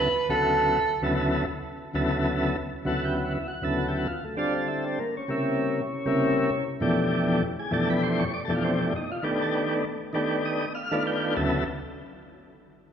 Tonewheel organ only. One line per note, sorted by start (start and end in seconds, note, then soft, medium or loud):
0.29 0.79 D2 medium
0.29 0.79 C#3 medium
0.29 0.80 F#3 medium
0.29 0.80 B3 medium
0.29 0.80 E4 medium
0.29 0.80 F#4 medium
1.02 1.45 D2 loud
1.02 1.45 C#3 medium
1.02 1.45 F#3 medium
1.02 1.45 B3 medium
1.02 1.46 E4 medium
1.02 1.46 A4 loud
1.94 2.56 D2 medium
1.94 2.56 C#3 medium
1.94 2.56 F#3 medium
1.94 2.57 B3 medium
1.94 2.57 E4 medium
1.94 2.57 A4 loud
2.85 3.38 D2 medium
2.85 3.38 C#3 medium
2.85 3.38 F#3 medium
2.85 3.38 B3 medium
2.85 3.34 E4 medium
2.85 3.16 F#4 medium
2.85 3.03 A4 medium
3.05 3.17 G4 medium
3.17 3.33 F#4 medium
3.35 3.47 E4 medium
3.48 3.63 F#4 medium
3.62 4.06 D2 medium
3.62 4.07 C#3 medium
3.62 4.07 F#3 medium
3.62 4.07 B3 medium
3.62 4.07 E4 medium
3.62 4.08 A4 medium
3.78 3.87 F#4 medium
3.88 3.97 G4 medium
3.98 4.07 F#4 medium
4.08 4.24 F4 medium
4.25 4.38 A3 medium
4.37 4.99 D3 medium
4.37 4.99 G3 medium
4.37 4.85 C4 medium
4.37 4.54 D4 medium
4.37 4.54 F4 medium
4.37 5.00 A4 medium
4.55 4.68 F4 medium
4.68 4.84 E4 medium
4.87 4.99 C4 medium
5.00 5.15 A#3 medium
5.17 6.64 C#4 medium
5.28 5.81 C3 medium
5.28 5.81 C#3 medium
5.28 5.81 G3 medium
5.28 5.81 A#3 medium
5.28 5.82 E4 medium
6.05 6.50 C3 medium
6.05 6.50 C#3 medium
6.05 6.50 G3 medium
6.05 6.50 A#3 medium
6.05 6.51 E4 loud
6.80 7.42 F2 medium
6.80 7.42 B2 medium
6.80 7.42 E3 medium
6.80 7.43 A3 medium
6.80 7.43 D4 medium
6.80 7.43 G4 loud
7.59 7.72 G#4 medium
7.71 8.23 F2 medium
7.71 8.24 B2 medium
7.71 8.24 E3 medium
7.71 8.24 A3 medium
7.71 8.24 D4 medium
7.71 8.25 G4 medium
7.71 7.89 A4 loud
7.90 8.02 B4 medium
8.03 8.19 C5 medium
8.20 8.32 C#5 medium
8.34 8.43 D5 medium
8.45 8.92 F2 medium
8.45 8.93 B2 medium
8.45 8.53 A4 medium
8.49 8.93 E3 medium
8.49 8.93 A3 medium
8.49 8.81 D4 medium
8.49 8.93 G4 medium
8.55 8.64 F4 medium
8.64 8.80 C4 medium
8.83 8.94 D4 medium
8.96 9.11 D#4 medium
9.12 9.24 F4 medium
9.22 9.84 D#3 medium
9.22 9.85 A3 medium
9.22 9.85 B3 medium
9.22 9.85 D4 medium
9.22 9.56 G4 medium
9.42 9.54 A4 medium
9.57 9.74 G4 medium
10.13 10.66 D#3 medium
10.13 10.66 A3 medium
10.13 10.66 B3 medium
10.13 10.66 D4 medium
10.13 10.67 G4 medium
10.45 10.73 D#5 medium
10.75 11.03 F5 medium
10.91 11.35 D#3 loud
10.91 11.35 A3 loud
10.91 11.35 B3 loud
10.91 11.36 D4 medium
10.91 11.36 F4 loud
11.07 11.34 G5 medium
11.36 11.64 D2 medium
11.36 11.64 C#3 medium
11.36 11.64 F#3 medium
11.36 11.64 B3 medium
11.36 11.64 E4 medium
11.36 11.64 A4 loud